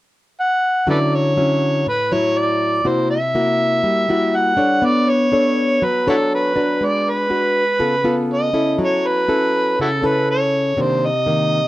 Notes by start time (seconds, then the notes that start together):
0.40 F#5
0.87 D3 F#3 C#4 E4 A4 B4 D5
1.15 C#5
1.37 F#3 C#4 E4
1.86 A2 B4
2.12 F#3 E4 C#5
2.38 D5
2.84 C3 A#3 E4 F#4 C5
3.11 E5
3.35 A#3 E4 F#4
3.83 G3
4.09 A#3 E4 F#4
4.36 F#5
4.57 D4 A4 C#5
4.82 B3 D5
5.10 C#5
5.32 D4 A4 C#5
5.82 F#3 B4
6.07 D4 E4 F#4 A4 C#5
6.35 B4
6.56 D4 F#4 B4
6.81 G#3
6.85 D5
7.10 B4
7.30 D4 F#4 B4
7.79 C#3 B3 F4 A4
8.04 B3 F4 A4
8.33 D#5
8.53 C#4 E4 A4
8.79 F#3
8.84 C#5
9.08 B4
9.29 C#4 E4 A4
9.79 C#3 E4 F#4 A4
10.02 C#4 E4 A4 B4
10.31 C#5
10.77 C3 D#3 A#3 D4
10.81 C5
11.06 D#5
11.26 D#3 A#3